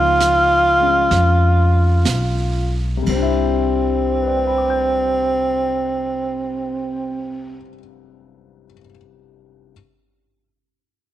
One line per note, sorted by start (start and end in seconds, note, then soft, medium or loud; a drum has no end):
0.00 1.07 C#2 medium
0.00 3.06 F3 soft
0.00 0.78 G#3 soft
0.00 3.08 B3 soft
0.00 3.09 D#4 medium
0.00 2.78 F4 medium
0.20 snare soft
0.20 hi-hat pedal soft
0.80 3.07 G#3 soft
0.80 3.08 C#4 soft
1.11 2.02 F2 medium
1.11 brush sweep soft
1.11 snare soft
2.05 3.03 B1 medium
2.05 snare soft
2.05 hi-hat pedal soft
2.97 7.55 C3 soft
3.03 7.60 G3 soft
3.03 ride soft
3.07 7.61 C2 medium
3.07 7.67 C4 soft
3.07 kick soft
3.12 7.66 C4 medium
3.16 7.74 D4 soft
3.22 7.80 E4 medium
4.12 8.66 G4 soft
4.21 8.72 B4 soft
4.27 8.76 D5 soft
4.37 8.81 G5 soft
4.47 8.86 B5 soft
4.58 8.91 D6 soft
4.70 8.97 G6 soft